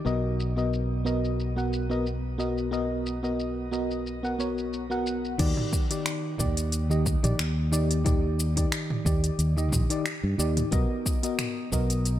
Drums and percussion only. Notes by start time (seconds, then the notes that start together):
0.07 shaker
0.40 shaker
0.58 shaker
0.73 shaker
1.06 shaker
1.25 shaker
1.40 shaker
1.58 shaker
1.73 shaker
1.91 shaker
2.07 shaker
2.40 shaker
2.58 shaker
2.73 shaker
3.06 shaker
3.24 shaker
3.40 shaker
3.73 shaker
3.91 shaker
4.07 shaker
4.25 shaker
4.40 shaker
4.58 shaker
4.73 shaker
4.91 shaker
5.07 shaker
5.25 shaker
5.39 kick, closed hi-hat, crash, shaker
5.57 mid tom
5.73 kick, shaker
5.91 closed hi-hat, shaker
6.06 finger snap, closed hi-hat, shaker
6.39 kick, mid tom, shaker
6.57 closed hi-hat, shaker
6.72 closed hi-hat, shaker
6.91 shaker
7.06 kick, shaker
7.24 closed hi-hat, mid tom, shaker
7.39 finger snap, closed hi-hat, shaker
7.73 shaker
7.91 closed hi-hat, shaker
8.06 kick, closed hi-hat, mid tom, shaker
8.40 shaker
8.57 kick, closed hi-hat, shaker
8.72 finger snap, closed hi-hat, shaker
8.90 mid tom
9.06 kick, shaker
9.24 closed hi-hat, shaker
9.39 closed hi-hat, shaker
9.58 shaker
9.72 kick, mid tom, shaker
9.90 closed hi-hat, shaker
10.06 finger snap, closed hi-hat, shaker
10.40 shaker
10.57 closed hi-hat, mid tom, shaker
10.72 kick, closed hi-hat, shaker
11.06 kick, shaker
11.23 closed hi-hat, shaker
11.39 finger snap, closed hi-hat, mid tom, shaker
11.72 kick, shaker
11.90 closed hi-hat, shaker
12.06 closed hi-hat, shaker